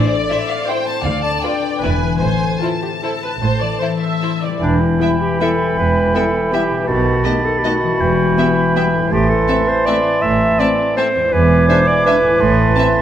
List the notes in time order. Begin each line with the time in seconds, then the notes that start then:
Already playing: A1 A2 E4 C5 D5
0.11 C4 D5
0.30 E4 C5 E5
0.49 C5 F5
0.68 E4 C5 G5
0.87 C4 A5
1.04 D2 D3 D5 F5
1.23 D4 A5
1.42 F4 B4 G5
1.62 B4
1.82 E1 E2 E3 E4 B4 D5 G#5
2.02 E4 B4
2.20 A1 A2 C5 G#5
2.40 C4
2.60 E4 F4 C5 A5
2.81 G4 C5
3.02 E4 A4 C5
3.23 C4 B4
3.42 A1 A2 C5
3.60 E3 D5
3.79 E4 C5
4.00 C5 E5
4.22 E4 C5
4.41 E3 C4 D5
4.48 G3
4.52 E4
4.57 E3 B4
4.61 E1 E2 D4 G5 B5
4.80 E4
5.00 G3 B3 E4 E5 G5
5.21 G4
5.40 G3 B3 E4 A4 E5 G5
5.78 E1 E2 B4
6.14 G3 B3 E4 A4 E5 G5
6.52 G3 B3 E4 G4 E5 G5
6.70 B2
6.75 A3
6.79 D#4
6.84 B4 A5
6.88 B1 B2 D#3 F#4 B5
7.25 A3 B3 D#4 G4 D#5 A5
7.45 A4
7.58 G4
7.64 A3 B3 D#4 F#4 D#5 A5
7.83 E3
7.87 G3
7.92 E4
7.96 B4 G5
8.00 E1 E2 E3
8.37 G3 B3 E5 G5
8.75 G3 B3 E5 G5
8.94 A2
8.98 A3
9.03 E4
9.07 C5
9.11 A1 A2 E3 G4 A5 C6
9.29 A4
9.47 A3 C4 E5 A5
9.68 C5
9.86 A3 C4 D5 E5 A5
10.21 A1 A2 E5
10.59 A3 C4 D5 E5 A5
10.96 A3 C4 C5 E5 A5
11.15 E2
11.20 G#3
11.24 E4
11.28 D5
11.32 E1 E2 E3 B4 G#5 D6
11.68 G#3 D4 C5 E5 G#5
11.87 D5
12.06 G#3 D4 B4 E5 G#5
12.22 A2
12.27 A3 E4
12.36 C5
12.40 A1 A2 A5 C6
12.76 A3 C4 E5 A5